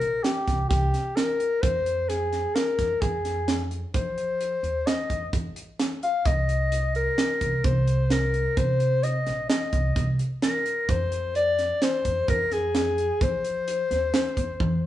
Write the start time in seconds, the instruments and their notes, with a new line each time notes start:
Already playing: soprano saxophone A#4
0.01 upright bass A#1, closed hi-hat
0.23 soprano saxophone G4, snare, closed hi-hat
0.48 upright bass C2, kick, snare, closed hi-hat
0.69 upright bass C2, soprano saxophone G4, kick, snare, closed hi-hat
0.94 snare, closed hi-hat
1.16 soprano saxophone A#4, snare, closed hi-hat
1.40 closed hi-hat
1.62 upright bass F2, soprano saxophone C5, kick, closed hi-hat
1.86 closed hi-hat
2.09 soprano saxophone G#4, snare, closed hi-hat
2.33 snare, closed hi-hat
2.55 soprano saxophone A#4, snare, closed hi-hat
2.79 upright bass F2, kick, snare, closed hi-hat
3.01 upright bass F2, soprano saxophone G#4, kick, closed hi-hat
3.25 snare, closed hi-hat
3.48 snare, closed hi-hat
3.71 closed hi-hat
3.94 upright bass F3, soprano saxophone C5, kick, closed hi-hat
4.18 closed hi-hat
4.41 closed hi-hat
4.63 upright bass D#2, closed hi-hat
4.86 soprano saxophone D#5, snare, closed hi-hat
5.10 upright bass F2, kick, closed hi-hat
5.33 upright bass F2, kick, closed hi-hat
5.56 closed hi-hat
5.79 snare, closed hi-hat
6.03 soprano saxophone F5, closed hi-hat
6.25 upright bass C2, soprano saxophone D#5, kick, closed hi-hat
6.49 closed hi-hat
6.72 closed hi-hat
6.95 soprano saxophone A#4, closed hi-hat
7.18 snare, closed hi-hat
7.41 upright bass C2, kick, closed hi-hat
7.64 upright bass C2, soprano saxophone C5, kick, closed hi-hat
7.87 closed hi-hat
8.10 soprano saxophone A#4, snare, closed hi-hat
8.34 closed hi-hat
8.57 upright bass C3, soprano saxophone C5, kick, closed hi-hat
8.80 closed hi-hat
9.03 soprano saxophone D#5, closed hi-hat
9.27 upright bass A#1, snare, closed hi-hat
9.50 soprano saxophone D#5, snare, closed hi-hat
9.73 upright bass C2, kick, closed hi-hat
9.96 upright bass C2, kick, closed hi-hat
10.19 closed hi-hat
10.42 soprano saxophone A#4, snare, closed hi-hat
10.66 closed hi-hat
10.89 upright bass F2, soprano saxophone C5, kick, closed hi-hat
11.12 closed hi-hat
11.35 soprano saxophone D5, closed hi-hat
11.59 snare, closed hi-hat
11.82 soprano saxophone C5, snare, closed hi-hat
12.05 upright bass F2, kick, closed hi-hat
12.28 upright bass F2, soprano saxophone A#4, kick, closed hi-hat
12.51 soprano saxophone G#4, snare, closed hi-hat
12.75 snare, closed hi-hat
12.98 closed hi-hat
13.21 upright bass F3, soprano saxophone C5, kick, closed hi-hat
13.44 closed hi-hat
13.68 closed hi-hat
13.91 upright bass D#2, snare, closed hi-hat
14.14 snare, closed hi-hat
14.37 upright bass F2, kick, closed hi-hat
14.60 upright bass F2, kick, high tom